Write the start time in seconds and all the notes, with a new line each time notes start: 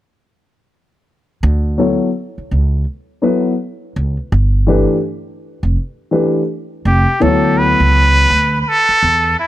1.43 D2
1.78 F#3 B3 E4 A4 C#5
2.38 muted upright bass stroke
2.51 C#2
3.22 F#3 B3 E4 A4 B4
3.96 C#2
4.32 G1
4.67 E3 A3 D4 G4 B4
5.63 F1
6.11 E3 A3 D4 G4 B4
6.85 F1 G4
7.20 D2 E3 B3 E4 A4 C#5
7.26 F#3
7.58 B4
7.80 C#2
8.30 D2
8.61 B4
8.68 A4
8.89 muted upright bass stroke
9.03 E2
9.40 E4